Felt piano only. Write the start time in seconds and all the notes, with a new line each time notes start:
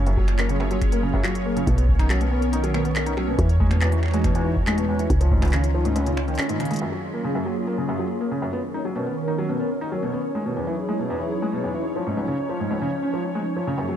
0.07 F#2
0.17 F#3
0.39 A#3
0.49 C#3
0.60 F#2
0.71 F#3
0.92 A#3
1.03 C#3
1.14 F#2
1.24 F#3
1.46 A#3
1.56 C#3
1.67 B2
1.78 B3
1.99 D#4
2.10 F#3
2.21 B2
2.31 B3
2.53 D#4
2.64 F#3
2.74 B2
2.85 B3
3.06 D#4
3.17 F#3
3.28 B2
3.39 E3
3.60 G#3
3.71 B2
3.81 E2
3.92 E3
4.14 G#3
4.24 B2
4.35 E2
4.46 E3
4.67 G#3
4.78 B2
4.89 E2
4.99 E3
5.21 F3
5.32 G#2
5.42 C#2
5.53 C#3
5.74 F3
5.85 G#2
5.96 C#2
6.06 C#3
6.28 D#3
6.39 C#4
6.49 G#2
6.60 C#3
6.71 G#3
6.82 F#2
6.92 F#3
7.14 A#3
7.24 C#3
7.35 F#2
7.46 F#3
7.67 A#3
7.78 C#3
7.89 F#2
7.99 F#3
8.21 A#3
8.31 C#3
8.42 F#2
8.53 B3
8.74 D#4
8.85 F#3
8.96 B2
9.06 B3
9.28 D#4
9.38 F#3
9.49 B2
9.60 B3
9.81 D#4
9.92 F#3
10.03 B2
10.13 B3
10.35 G#3
10.46 B2
10.56 E2
10.67 E3
10.89 G#3
10.99 B2
11.10 E2
11.21 E3
11.42 G#3
11.53 B2
11.64 E2
11.74 E3
11.96 F3
12.07 G#2
12.17 C#2
12.28 C#3
12.49 F3
12.60 G#2
12.71 C#2
12.81 C#3
13.03 C#4
13.14 F3
13.35 G#3
13.56 F3
13.67 C#3
13.78 F#2
13.89 F#3